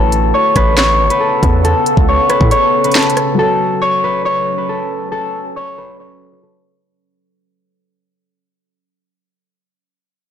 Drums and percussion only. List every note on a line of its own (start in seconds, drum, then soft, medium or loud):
0.12 closed hi-hat medium
0.56 kick medium
0.56 cross-stick loud
0.56 closed hi-hat medium
0.77 snare loud
0.77 clap loud
0.77 closed hi-hat medium
1.10 closed hi-hat medium
1.43 kick medium
1.43 closed hi-hat medium
1.65 closed hi-hat medium
1.86 closed hi-hat medium
1.97 kick medium
2.30 cross-stick medium
2.30 closed hi-hat medium
2.41 kick medium
2.51 closed hi-hat medium
2.84 closed hi-hat medium
2.92 closed hi-hat medium
2.95 snare loud
2.95 clap medium
2.95 closed hi-hat medium
2.99 closed hi-hat medium
3.02 closed hi-hat medium
3.10 closed hi-hat medium
3.17 cross-stick medium
3.17 closed hi-hat medium